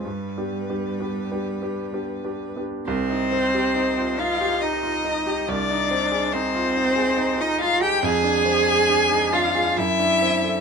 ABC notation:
X:1
M:3/4
L:1/16
Q:1/4=68
K:Gphr
V:1 name="Violin"
=B12 | c6 f2 e4 | d4 c4- c e f g | a6 f2 =e4 |]
V:2 name="Cello"
G,12 | C6 F2 E4 | D4 C4- C E F G | A6 F2 =E4 |]
V:3 name="Grand piano"
(3G,,2 [=B,DG]2 [B,DG]2 (3[B,DG]2 [B,DG]2 [B,DG]2 (3[B,DG]2 [B,DG]2 [B,DG]2 | C,, E C G E F E G E F E G | C,, E C A E F E A E F E A | F,, D C A D E D A ^F,, D C =A |]